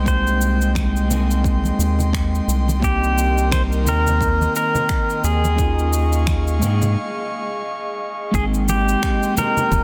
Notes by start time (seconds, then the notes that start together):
Already playing: C2 G#3 D#5 G5 C6
0.03 G#3 A#3 C4, kick, shaker
0.08 D#4 G4 C5
0.27 shaker
0.41 shaker
0.61 shaker
0.75 finger snap, kick, high conga, shaker
0.96 shaker
1.07 G#3 A#3 C4, low conga, shaker
1.12 D#4 G#4
1.31 shaker
1.44 kick, shaker
1.64 high conga, shaker
1.79 D#2, shaker
1.99 low conga, shaker
2.13 finger snap, kick, shaker
2.35 shaker
2.48 C2, shaker
2.68 high conga, shaker
2.80 G3 A#3 C4 A#4 D#5, kick
2.84 D#4 G4, shaker
3.04 shaker
3.18 shaker
3.38 shaker
3.51 C5, finger snap, kick, high conga, shaker
3.72 shaker
3.83 D#2 D#3 A#3 C4, low conga, shaker
3.88 D#4 A#4 G5
4.07 low conga, shaker
4.21 kick, shaker
4.41 high conga, shaker
4.56 A#4, shaker
4.75 low conga, shaker
4.89 finger snap, kick, shaker
5.10 shaker
5.24 D#2 G#4, shaker
5.44 high conga, shaker
5.56 G#3 A#3 C#4 G#4 F5 C#6, kick, shaker
5.60 D#4 F4
5.79 shaker
5.93 shaker
6.13 shaker
6.27 finger snap, kick, high conga, shaker
6.47 shaker
6.59 G#2 G#3 A#3, low conga, shaker
6.64 D#4 G5
6.82 low conga, shaker
8.31 G#1 G#3 A#3 C4 G#4 D#5 G5 C6, kick, shaker
8.36 D#4 G5
8.54 shaker
8.69 G4, high conga, shaker
8.88 shaker
9.03 finger snap, kick, shaker
9.23 shaker
9.35 G#3 A#3 C4 A#4, high conga, low conga, shaker
9.39 D#4 G4
9.57 low conga, shaker
9.71 D#1, kick, high conga, shaker